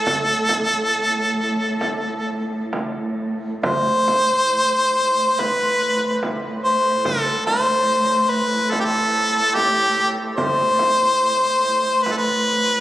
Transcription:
Already playing: A2 A4
0.07 frame drum
0.49 frame drum
1.81 frame drum
2.73 frame drum
3.62 A2 C5, frame drum
4.08 frame drum
5.39 B4, frame drum
6.23 frame drum
6.64 C5
7.05 A4, frame drum
7.46 C5, frame drum
8.30 B4
8.71 A4, frame drum
8.80 G4
8.85 A4
9.55 G4, frame drum
10.36 C5, frame drum
10.79 frame drum
12.03 B4, frame drum
12.12 A4
12.17 B4

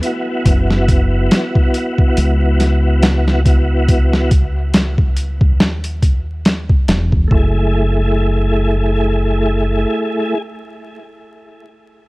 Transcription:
0.01 B3 E4, closed hi-hat
0.06 F#4
0.45 F#1, kick, closed hi-hat
0.70 snare
0.88 kick, closed hi-hat
1.31 snare, closed hi-hat
1.55 kick
1.74 closed hi-hat
1.98 kick
2.17 C#2, closed hi-hat
2.60 snare, closed hi-hat
3.03 snare, closed hi-hat
3.28 snare
3.45 B3 E4 F#4, kick, closed hi-hat
3.88 kick, closed hi-hat
4.13 snare
4.31 kick, closed hi-hat
4.74 snare, closed hi-hat
4.98 kick
5.17 closed hi-hat
5.41 D#2, kick
5.60 snare
5.84 closed hi-hat
6.02 kick, closed hi-hat
6.45 snare, closed hi-hat
6.70 kick
6.88 E1, snare, closed hi-hat
7.12 kick
7.28 F#1 A3 E4, kick
7.35 G#4

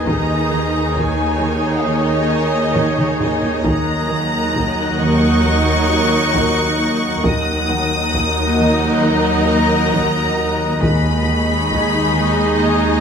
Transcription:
Already playing: D#5 G#5
0.06 D#2 D#3 D#4 G#4 C#5 D#5 A#5, taiko
0.51 D#3
0.95 D#3 C#5 G#5, taiko
1.39 D#3
1.85 D#3 D#5
2.30 D#4
2.74 D#3, taiko low-mid
2.98 taiko mid
3.20 D#4 D#5, taiko low-mid
3.43 taiko low
3.64 D#2 D#3 F#3 D#4 A#4 D#5 F#5 A#5 F#6 A#6, taiko
4.10 D#3
4.55 D#3, taiko
4.98 D#3 C#6
5.45 D#3
5.89 D#4
6.34 D#3, taiko
6.78 D#4
7.23 D#2 D#3 F#3 D#4 A#4 D#5 F#5 D#6, taiko
7.68 D#3 F#5
8.14 D#3, taiko
8.56 D#3 D#5
9.03 D#3 A#5
9.47 D#4
9.92 D#3, taiko
10.36 D#4
10.81 D#2 D#3 G#3 D#4 G#4 D#5 G#5 B5 C#6, taiko
11.25 D#3
11.71 D#3, taiko
12.16 D#3
12.59 D#3 A#5 D#6

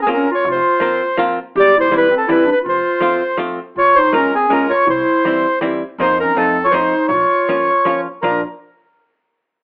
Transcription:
0.02 C4 G#4
0.07 A#3 C4 C#4 F4
0.13 C#4 A#4
0.31 F4 C#5
0.45 F1 F4
0.52 C5
0.80 F3 A#3 C4 F4
1.17 F3 A#3 C4 F4
1.56 E1 G4
1.60 D5
1.77 E4 C5
1.91 E3 G3 C4 E4
1.97 B4
2.10 C4
2.17 A4
2.27 E3 G3 C4 E4 B4
2.45 D4
2.52 B4
2.62 F1 F4
2.69 C5
3.01 F3 A3 C4 F4
3.37 F3 A3 C4 F4
3.76 A#1 F4 C#5
3.96 D#4 C5
4.13 G#3 A#3 C#4 F4 A#4
4.34 C4 G#4
4.48 G#3 A#3 C#4
4.52 F4 A#4
4.69 F4 C#5
4.86 C2 E4 C5
5.25 E3 G3 C4 E4
5.61 E3 G3 C4 E4
5.98 F2 F3 A#3 C4 D#4 C5
6.20 C#4 A#4
6.34 F2 F3 A3 C4 D#4 A4
6.64 F4 C#5
6.71 F3 A3 C4 D#4 C5
6.76 D#4
7.08 A#1 C#5
7.13 F4
7.49 F3 A#3 C#4 F4
7.85 F3 A#3 C#4 F4
8.22 A#1 F3 A#3 D4 F4 A#4

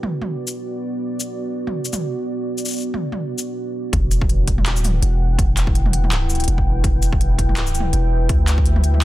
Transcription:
Already playing: B3 F#4 B4 D5
0.03 mid tom
0.22 mid tom
0.47 shaker
1.20 shaker
1.67 mid tom
1.85 shaker
1.93 mid tom, shaker
2.58 shaker
2.65 shaker
2.68 shaker
2.71 shaker
2.73 shaker
2.76 shaker
2.78 shaker
2.80 shaker
2.82 shaker
2.94 mid tom
3.12 mid tom
3.38 shaker
3.93 E1 E4 B4 F#5 G5, kick, closed hi-hat
4.11 closed hi-hat, shaker
4.21 kick
4.29 closed hi-hat
4.47 kick, closed hi-hat
4.58 mid tom
4.66 D#1, clap, closed hi-hat
4.76 shaker
4.85 closed hi-hat, mid tom, shaker
5.02 E1, closed hi-hat
5.38 E1, kick, closed hi-hat
5.57 clap, closed hi-hat, shaker
5.67 kick
5.75 closed hi-hat
5.86 mid tom
5.93 closed hi-hat
6.04 mid tom
6.12 clap, closed hi-hat
6.30 closed hi-hat, shaker
6.35 closed hi-hat
6.40 closed hi-hat
6.44 closed hi-hat
6.48 E1, closed hi-hat
6.58 kick
6.84 E1 E5, kick, closed hi-hat
7.03 closed hi-hat, shaker
7.13 kick
7.21 closed hi-hat
7.38 kick, closed hi-hat
7.49 mid tom
7.57 clap, closed hi-hat
7.67 shaker
7.75 closed hi-hat, shaker
7.80 mid tom
7.93 E1, closed hi-hat
8.29 D2, kick, closed hi-hat
8.48 clap, closed hi-hat, shaker
8.58 kick
8.66 closed hi-hat
8.76 mid tom
8.84 closed hi-hat
8.94 mid tom

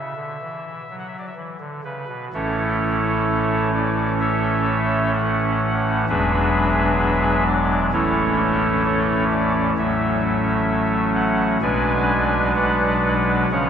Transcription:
Already playing: C#3 E5
0.16 D3
0.41 E3
0.90 F#3
0.99 F#5
1.08 E5
1.18 D5
1.27 E5
1.36 E3
1.60 D3
1.84 C#3 B4
2.08 B2
2.34 A1 A2 E3 A3 C#4 E4 A4 C#5
3.73 D5
4.20 A4 C#5 E5
5.15 F#5
6.09 E1 E2 F#3 G#3 D4 G#4 B4 E5
7.47 D5
7.93 A1 A2 E3 A3 C#4 E4 A4 C#5
8.85 E4 A4 C#5
9.31 D5
9.78 A1 A2 F#3 A3 C#4 E5
11.15 F#5
11.62 B1 B2 F#3 G#3 D4 B4 D5 G#5
12.55 B4 D5 F#5
13.51 C#3 F3 G#3 C#4 C#5 F#5

